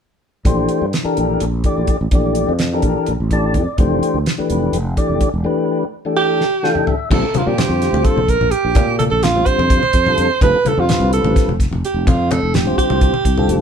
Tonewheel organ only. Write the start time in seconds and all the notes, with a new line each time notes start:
0.45 E3 A3 D4 G4 C5
1.03 E3 D4 G4 A4 A#4
1.64 E3 A3 D4 G4 D5
2.13 E3 A3 D4 G4 D5
2.73 E3 D4 G4 A4 A#4
3.31 E3 A3 D4 G4 D5 A5
3.55 D5
3.79 E3 A3 D4 G4 C5
4.38 E3 A3 D4 G4 B4
4.97 E3 A3 D4 G4 D5
5.44 E3 A3 D4 G4 B4
6.05 E3 A3 D4 G4 A4
6.63 E3 A3 D4 G4 A4 G5
6.87 E5
7.10 D3 G3 C4 F4 A4
7.34 D3 G3 C4 F4 A#4
7.45 D3 G3 C4 F4 G4
7.57 D3 G3 C4 F4 C5
9.35 D3 G3 C4 F4 C5
10.06 D3 G3 C4 F4 A4
10.43 D3 G3 C4 F4 A4
10.65 D3 G3 C4 F4 B4
10.77 D3 G3 C4 F4 C5
10.90 D3 G3 C4 F4 B4
12.66 D3 G3 C4 F4 C5
13.37 D3 G3 C4 F4 A4